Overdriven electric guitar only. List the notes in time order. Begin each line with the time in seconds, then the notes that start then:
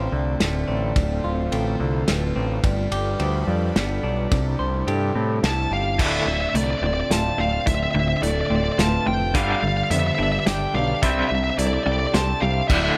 5.99 D2 A2 D3
6.27 D2 A2
6.55 D2 A2
6.83 D2 A2
7.11 D2 A2
7.38 D2 A2
7.66 D2 A2
7.94 D2 A2
8.22 D2 A2
8.50 D2 A2
8.79 D2 A2
9.06 D2 A2
9.34 G2 D3 G3
9.62 G2 D3
9.90 G2 D3
10.18 G2 D3
10.46 G2 D3
10.74 G2 D3
11.02 C3 G3 C4
11.30 C3 G3
11.58 C3 G3
11.86 C3 G3
12.14 C3 G3
12.42 C3 G3
12.69 D2 A2 D3